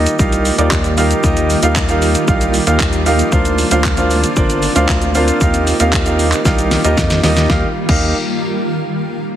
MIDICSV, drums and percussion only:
0, 0, Header, 1, 2, 480
1, 0, Start_track
1, 0, Key_signature, -3, "major"
1, 0, Tempo, 521739
1, 1137, Time_signature, 4, 2, 24, 8
1, 8614, End_track
2, 0, Start_track
2, 0, Title_t, "Drums"
2, 60, Note_on_c, 9, 42, 82
2, 60, Note_on_c, 9, 82, 78
2, 152, Note_off_c, 9, 42, 0
2, 152, Note_off_c, 9, 82, 0
2, 177, Note_on_c, 9, 36, 121
2, 177, Note_on_c, 9, 82, 76
2, 269, Note_off_c, 9, 36, 0
2, 269, Note_off_c, 9, 82, 0
2, 299, Note_on_c, 9, 42, 57
2, 299, Note_on_c, 9, 82, 57
2, 391, Note_off_c, 9, 42, 0
2, 391, Note_off_c, 9, 82, 0
2, 417, Note_on_c, 9, 46, 79
2, 417, Note_on_c, 9, 82, 56
2, 509, Note_off_c, 9, 46, 0
2, 509, Note_off_c, 9, 82, 0
2, 539, Note_on_c, 9, 42, 71
2, 539, Note_on_c, 9, 82, 75
2, 631, Note_off_c, 9, 42, 0
2, 631, Note_off_c, 9, 82, 0
2, 654, Note_on_c, 9, 39, 117
2, 657, Note_on_c, 9, 36, 115
2, 657, Note_on_c, 9, 82, 77
2, 746, Note_off_c, 9, 39, 0
2, 749, Note_off_c, 9, 36, 0
2, 749, Note_off_c, 9, 82, 0
2, 775, Note_on_c, 9, 42, 55
2, 775, Note_on_c, 9, 82, 55
2, 867, Note_off_c, 9, 42, 0
2, 867, Note_off_c, 9, 82, 0
2, 898, Note_on_c, 9, 46, 88
2, 898, Note_on_c, 9, 82, 64
2, 990, Note_off_c, 9, 46, 0
2, 990, Note_off_c, 9, 82, 0
2, 1018, Note_on_c, 9, 42, 58
2, 1018, Note_on_c, 9, 82, 62
2, 1110, Note_off_c, 9, 42, 0
2, 1110, Note_off_c, 9, 82, 0
2, 1137, Note_on_c, 9, 36, 113
2, 1137, Note_on_c, 9, 82, 73
2, 1229, Note_off_c, 9, 36, 0
2, 1229, Note_off_c, 9, 82, 0
2, 1258, Note_on_c, 9, 42, 60
2, 1258, Note_on_c, 9, 82, 59
2, 1350, Note_off_c, 9, 42, 0
2, 1350, Note_off_c, 9, 82, 0
2, 1379, Note_on_c, 9, 46, 82
2, 1379, Note_on_c, 9, 82, 62
2, 1471, Note_off_c, 9, 46, 0
2, 1471, Note_off_c, 9, 82, 0
2, 1496, Note_on_c, 9, 42, 91
2, 1496, Note_on_c, 9, 82, 91
2, 1588, Note_off_c, 9, 42, 0
2, 1588, Note_off_c, 9, 82, 0
2, 1615, Note_on_c, 9, 39, 123
2, 1617, Note_on_c, 9, 82, 87
2, 1620, Note_on_c, 9, 36, 124
2, 1707, Note_off_c, 9, 39, 0
2, 1709, Note_off_c, 9, 82, 0
2, 1712, Note_off_c, 9, 36, 0
2, 1736, Note_on_c, 9, 42, 59
2, 1736, Note_on_c, 9, 82, 57
2, 1828, Note_off_c, 9, 42, 0
2, 1828, Note_off_c, 9, 82, 0
2, 1859, Note_on_c, 9, 46, 73
2, 1859, Note_on_c, 9, 82, 55
2, 1951, Note_off_c, 9, 46, 0
2, 1951, Note_off_c, 9, 82, 0
2, 1978, Note_on_c, 9, 42, 80
2, 1978, Note_on_c, 9, 82, 81
2, 2070, Note_off_c, 9, 42, 0
2, 2070, Note_off_c, 9, 82, 0
2, 2095, Note_on_c, 9, 82, 77
2, 2097, Note_on_c, 9, 36, 124
2, 2187, Note_off_c, 9, 82, 0
2, 2189, Note_off_c, 9, 36, 0
2, 2217, Note_on_c, 9, 42, 57
2, 2217, Note_on_c, 9, 82, 57
2, 2309, Note_off_c, 9, 42, 0
2, 2309, Note_off_c, 9, 82, 0
2, 2335, Note_on_c, 9, 46, 80
2, 2335, Note_on_c, 9, 82, 56
2, 2427, Note_off_c, 9, 46, 0
2, 2427, Note_off_c, 9, 82, 0
2, 2457, Note_on_c, 9, 42, 74
2, 2457, Note_on_c, 9, 82, 73
2, 2549, Note_off_c, 9, 42, 0
2, 2549, Note_off_c, 9, 82, 0
2, 2574, Note_on_c, 9, 39, 118
2, 2576, Note_on_c, 9, 82, 77
2, 2577, Note_on_c, 9, 36, 111
2, 2666, Note_off_c, 9, 39, 0
2, 2668, Note_off_c, 9, 82, 0
2, 2669, Note_off_c, 9, 36, 0
2, 2694, Note_on_c, 9, 42, 55
2, 2694, Note_on_c, 9, 82, 56
2, 2786, Note_off_c, 9, 42, 0
2, 2786, Note_off_c, 9, 82, 0
2, 2817, Note_on_c, 9, 46, 90
2, 2817, Note_on_c, 9, 82, 60
2, 2909, Note_off_c, 9, 46, 0
2, 2909, Note_off_c, 9, 82, 0
2, 2937, Note_on_c, 9, 42, 60
2, 2937, Note_on_c, 9, 82, 61
2, 3029, Note_off_c, 9, 42, 0
2, 3029, Note_off_c, 9, 82, 0
2, 3056, Note_on_c, 9, 36, 115
2, 3056, Note_on_c, 9, 82, 70
2, 3148, Note_off_c, 9, 36, 0
2, 3148, Note_off_c, 9, 82, 0
2, 3176, Note_on_c, 9, 42, 58
2, 3176, Note_on_c, 9, 82, 60
2, 3268, Note_off_c, 9, 42, 0
2, 3268, Note_off_c, 9, 82, 0
2, 3297, Note_on_c, 9, 46, 81
2, 3297, Note_on_c, 9, 82, 62
2, 3389, Note_off_c, 9, 46, 0
2, 3389, Note_off_c, 9, 82, 0
2, 3416, Note_on_c, 9, 42, 88
2, 3416, Note_on_c, 9, 82, 91
2, 3508, Note_off_c, 9, 42, 0
2, 3508, Note_off_c, 9, 82, 0
2, 3534, Note_on_c, 9, 39, 117
2, 3536, Note_on_c, 9, 82, 86
2, 3539, Note_on_c, 9, 36, 119
2, 3626, Note_off_c, 9, 39, 0
2, 3628, Note_off_c, 9, 82, 0
2, 3631, Note_off_c, 9, 36, 0
2, 3655, Note_on_c, 9, 42, 58
2, 3655, Note_on_c, 9, 82, 56
2, 3747, Note_off_c, 9, 42, 0
2, 3747, Note_off_c, 9, 82, 0
2, 3778, Note_on_c, 9, 46, 78
2, 3778, Note_on_c, 9, 82, 53
2, 3870, Note_off_c, 9, 46, 0
2, 3870, Note_off_c, 9, 82, 0
2, 3897, Note_on_c, 9, 42, 84
2, 3897, Note_on_c, 9, 82, 80
2, 3989, Note_off_c, 9, 42, 0
2, 3989, Note_off_c, 9, 82, 0
2, 4014, Note_on_c, 9, 82, 78
2, 4017, Note_on_c, 9, 36, 122
2, 4106, Note_off_c, 9, 82, 0
2, 4109, Note_off_c, 9, 36, 0
2, 4137, Note_on_c, 9, 42, 60
2, 4137, Note_on_c, 9, 82, 56
2, 4229, Note_off_c, 9, 42, 0
2, 4229, Note_off_c, 9, 82, 0
2, 4255, Note_on_c, 9, 46, 77
2, 4255, Note_on_c, 9, 82, 57
2, 4347, Note_off_c, 9, 46, 0
2, 4347, Note_off_c, 9, 82, 0
2, 4377, Note_on_c, 9, 42, 74
2, 4377, Note_on_c, 9, 82, 76
2, 4469, Note_off_c, 9, 42, 0
2, 4469, Note_off_c, 9, 82, 0
2, 4494, Note_on_c, 9, 39, 124
2, 4497, Note_on_c, 9, 36, 112
2, 4497, Note_on_c, 9, 82, 76
2, 4586, Note_off_c, 9, 39, 0
2, 4589, Note_off_c, 9, 36, 0
2, 4589, Note_off_c, 9, 82, 0
2, 4615, Note_on_c, 9, 42, 56
2, 4615, Note_on_c, 9, 82, 55
2, 4707, Note_off_c, 9, 42, 0
2, 4707, Note_off_c, 9, 82, 0
2, 4736, Note_on_c, 9, 46, 85
2, 4736, Note_on_c, 9, 82, 60
2, 4828, Note_off_c, 9, 46, 0
2, 4828, Note_off_c, 9, 82, 0
2, 4856, Note_on_c, 9, 42, 59
2, 4856, Note_on_c, 9, 82, 62
2, 4948, Note_off_c, 9, 42, 0
2, 4948, Note_off_c, 9, 82, 0
2, 4976, Note_on_c, 9, 36, 110
2, 4976, Note_on_c, 9, 82, 74
2, 5068, Note_off_c, 9, 36, 0
2, 5068, Note_off_c, 9, 82, 0
2, 5096, Note_on_c, 9, 42, 59
2, 5096, Note_on_c, 9, 82, 59
2, 5188, Note_off_c, 9, 42, 0
2, 5188, Note_off_c, 9, 82, 0
2, 5217, Note_on_c, 9, 46, 85
2, 5217, Note_on_c, 9, 82, 62
2, 5309, Note_off_c, 9, 46, 0
2, 5309, Note_off_c, 9, 82, 0
2, 5335, Note_on_c, 9, 42, 92
2, 5335, Note_on_c, 9, 82, 94
2, 5427, Note_off_c, 9, 42, 0
2, 5427, Note_off_c, 9, 82, 0
2, 5453, Note_on_c, 9, 39, 122
2, 5455, Note_on_c, 9, 82, 86
2, 5459, Note_on_c, 9, 36, 123
2, 5545, Note_off_c, 9, 39, 0
2, 5547, Note_off_c, 9, 82, 0
2, 5551, Note_off_c, 9, 36, 0
2, 5575, Note_on_c, 9, 42, 55
2, 5575, Note_on_c, 9, 82, 57
2, 5667, Note_off_c, 9, 42, 0
2, 5667, Note_off_c, 9, 82, 0
2, 5697, Note_on_c, 9, 46, 75
2, 5697, Note_on_c, 9, 82, 54
2, 5789, Note_off_c, 9, 46, 0
2, 5789, Note_off_c, 9, 82, 0
2, 5814, Note_on_c, 9, 39, 66
2, 5818, Note_on_c, 9, 42, 80
2, 5818, Note_on_c, 9, 82, 78
2, 5906, Note_off_c, 9, 39, 0
2, 5910, Note_off_c, 9, 42, 0
2, 5910, Note_off_c, 9, 82, 0
2, 5936, Note_on_c, 9, 82, 75
2, 5937, Note_on_c, 9, 36, 127
2, 5937, Note_on_c, 9, 38, 68
2, 6028, Note_off_c, 9, 82, 0
2, 6029, Note_off_c, 9, 36, 0
2, 6029, Note_off_c, 9, 38, 0
2, 6058, Note_on_c, 9, 42, 55
2, 6058, Note_on_c, 9, 82, 58
2, 6150, Note_off_c, 9, 42, 0
2, 6150, Note_off_c, 9, 82, 0
2, 6176, Note_on_c, 9, 46, 75
2, 6176, Note_on_c, 9, 82, 55
2, 6177, Note_on_c, 9, 38, 85
2, 6268, Note_off_c, 9, 46, 0
2, 6268, Note_off_c, 9, 82, 0
2, 6269, Note_off_c, 9, 38, 0
2, 6298, Note_on_c, 9, 42, 74
2, 6298, Note_on_c, 9, 82, 73
2, 6390, Note_off_c, 9, 42, 0
2, 6390, Note_off_c, 9, 82, 0
2, 6416, Note_on_c, 9, 38, 92
2, 6417, Note_on_c, 9, 36, 112
2, 6417, Note_on_c, 9, 82, 77
2, 6508, Note_off_c, 9, 38, 0
2, 6509, Note_off_c, 9, 36, 0
2, 6509, Note_off_c, 9, 82, 0
2, 6534, Note_on_c, 9, 42, 57
2, 6534, Note_on_c, 9, 82, 57
2, 6536, Note_on_c, 9, 38, 92
2, 6626, Note_off_c, 9, 42, 0
2, 6626, Note_off_c, 9, 82, 0
2, 6628, Note_off_c, 9, 38, 0
2, 6656, Note_on_c, 9, 38, 114
2, 6657, Note_on_c, 9, 46, 86
2, 6657, Note_on_c, 9, 82, 62
2, 6748, Note_off_c, 9, 38, 0
2, 6749, Note_off_c, 9, 46, 0
2, 6749, Note_off_c, 9, 82, 0
2, 6777, Note_on_c, 9, 38, 103
2, 6777, Note_on_c, 9, 42, 58
2, 6777, Note_on_c, 9, 82, 61
2, 6869, Note_off_c, 9, 38, 0
2, 6869, Note_off_c, 9, 42, 0
2, 6869, Note_off_c, 9, 82, 0
2, 6897, Note_on_c, 9, 36, 116
2, 6897, Note_on_c, 9, 38, 94
2, 6989, Note_off_c, 9, 36, 0
2, 6989, Note_off_c, 9, 38, 0
2, 7257, Note_on_c, 9, 36, 110
2, 7257, Note_on_c, 9, 49, 91
2, 7349, Note_off_c, 9, 36, 0
2, 7349, Note_off_c, 9, 49, 0
2, 8614, End_track
0, 0, End_of_file